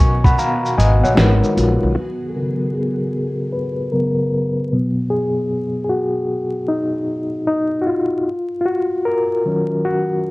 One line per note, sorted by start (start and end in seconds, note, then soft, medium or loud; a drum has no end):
0.00 0.34 B1 medium
0.00 1.11 B2 medium
0.00 1.14 D#3 medium
0.00 1.13 B3 medium
0.00 1.94 B3 medium
0.00 1.14 F#4 medium
0.00 1.14 A#4 medium
0.00 0.78 D#5 medium
0.00 0.23 G#5 medium
0.00 0.23 C#6 medium
0.00 closed hi-hat medium
0.00 shaker soft
0.24 0.38 F#5 medium
0.24 0.38 B5 medium
0.24 kick medium
0.24 shaker soft
0.39 0.76 F5 medium
0.39 0.76 A#5 medium
0.39 shaker medium
0.66 shaker soft
0.78 1.01 G#1 medium
0.78 1.02 D#5 medium
0.78 1.02 G#5 medium
0.78 closed hi-hat medium
0.78 shaker medium
1.03 1.16 A#1 medium
1.03 1.41 C#5 soft
1.03 1.41 F#5 medium
1.03 shaker soft
1.15 1.40 G#1 medium
1.15 1.95 G#3 medium
1.15 1.57 D#4 medium
1.15 1.94 F#4 medium
1.15 1.96 A#4 medium
1.15 snare loud
1.19 1.97 B4 medium
1.19 shaker medium
1.44 shaker soft
1.55 1.79 A#1 medium
1.55 1.97 F4 medium
1.55 closed hi-hat medium
1.55 shaker soft
1.83 1.95 B1 medium
1.95 2.31 F#4 medium
2.29 2.35 A4 medium
2.34 2.92 C#3 soft
2.34 2.92 F#3 soft
2.34 2.93 B3 medium
2.34 2.76 A#4 medium
2.74 3.49 G#4 medium
3.53 3.94 B4 loud
3.92 4.29 C#3 soft
3.92 4.29 F#3 soft
3.92 4.29 B3 soft
3.92 4.68 A#4 medium
4.72 5.87 B2 soft
4.72 5.87 F#3 soft
4.72 5.87 B3 soft
5.10 5.81 G#4 medium
5.85 5.90 G#4 medium
5.89 6.72 F#4 medium
6.68 7.44 D#4 medium
7.47 7.63 D#4 medium
7.82 7.88 F#4 medium
7.87 8.58 F4 medium
8.61 8.67 F4 medium
8.66 9.07 F#4 medium
9.05 9.87 A#4 medium
9.46 10.31 D#3 soft
9.46 10.31 F#3 soft
9.46 10.31 C#4 soft
9.85 10.31 F#4 medium